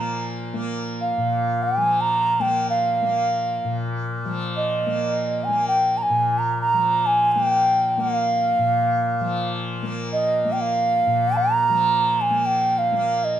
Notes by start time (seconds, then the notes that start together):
Already playing: A#2 F3 A#3 A#5
0.53 A#3
1.01 F5
1.18 A#2
1.63 G#5
1.77 F3
2.01 A#5
2.40 A#3 G5
2.70 F5
3.02 A#3
3.65 A#2
4.25 F3
4.56 D#5
4.86 A#3
5.44 G#5
5.48 A#3
5.68 G5
5.97 A#5
6.02 G#5
6.10 A#2
6.39 A#5
6.61 A#5
6.74 F3
7.06 G#5
7.32 A#3 G#5
7.44 G5
7.98 A#3 F#5
8.15 F5
8.59 A#2
9.21 F3
9.82 A#3
10.12 D#5
10.45 A#3
10.52 G5
10.61 F5
11.07 A#2
11.37 A#5
11.70 F3
12.21 G#5
12.30 A#3
12.46 G5
12.78 F5
12.92 A#3
13.24 D#5